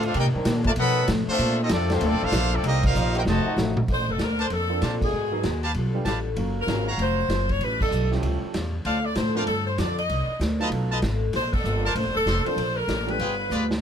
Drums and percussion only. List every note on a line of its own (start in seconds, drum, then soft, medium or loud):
0.03 ride medium
0.14 ride medium
0.45 snare medium
0.45 hi-hat pedal medium
0.45 ride medium
0.64 kick medium
0.64 ride medium
0.76 ride medium
1.08 snare medium
1.08 hi-hat pedal medium
1.08 ride medium
1.39 ride medium
1.69 snare medium
1.69 hi-hat pedal medium
1.69 ride medium
1.90 snare medium
1.90 ride medium
2.01 ride medium
2.32 snare medium
2.32 hi-hat pedal medium
2.32 ride medium
2.64 ride medium
2.83 kick loud
2.83 crash medium
2.95 hi-hat pedal medium
3.15 ride medium
3.26 snare medium
3.57 snare medium
3.57 hi-hat pedal medium
3.77 mid tom medium
3.88 kick medium
3.88 crash medium
4.19 snare medium
4.19 hi-hat pedal medium
4.19 ride medium
4.39 ride soft
4.50 ride medium
4.82 snare medium
4.82 hi-hat pedal medium
4.82 ride medium
5.02 kick medium
5.02 crash medium
5.43 snare medium
5.43 hi-hat pedal medium
5.43 ride medium
5.63 ride soft
5.74 ride medium
6.05 snare medium
6.05 hi-hat pedal medium
6.05 ride medium
6.36 ride medium
6.68 snare medium
6.68 hi-hat pedal medium
6.68 ride medium
6.99 ride medium
7.29 snare medium
7.29 hi-hat pedal soft
7.29 ride medium
7.49 kick medium
7.49 ride soft
7.61 ride medium
7.81 kick medium
7.81 crash medium
7.92 hi-hat pedal medium
8.12 snare soft
8.23 ride medium
8.54 snare medium
8.54 hi-hat pedal soft
8.54 ride medium
8.85 ride medium
9.15 snare medium
9.15 hi-hat pedal soft
9.15 ride medium
9.47 ride medium
9.78 snare medium
9.78 hi-hat pedal medium
9.78 ride medium
9.98 ride soft
10.09 ride medium
10.41 snare medium
10.41 hi-hat pedal medium
10.41 ride medium
10.61 ride soft
10.72 ride medium
11.02 snare medium
11.02 hi-hat pedal soft
11.02 ride medium
11.33 snare soft
11.33 ride medium
11.53 kick medium
11.53 crash medium
11.65 hi-hat pedal medium
11.95 ride medium
12.27 snare medium
12.27 hi-hat pedal medium
12.27 ride medium
12.46 ride soft
12.58 ride medium
12.88 snare medium
12.88 hi-hat pedal medium
12.88 ride medium
13.08 ride soft
13.19 ride medium
13.51 hi-hat pedal medium
13.71 snare medium